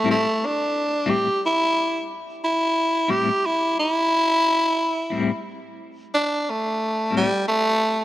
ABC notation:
X:1
M:12/8
L:1/8
Q:3/8=60
K:Ador
V:1 name="Tenor saxophone"
A, D2 G E2 z E2 G E E- | E4- E z D A,2 G, A,2 |]
V:2 name="Clean electric guitar"
[A,,G,CE] z2 [A,,G,CE] z4 z [A,,G,CE] z2 | z3 [A,,G,CE] z4 z [A,,G,CE] z2 |]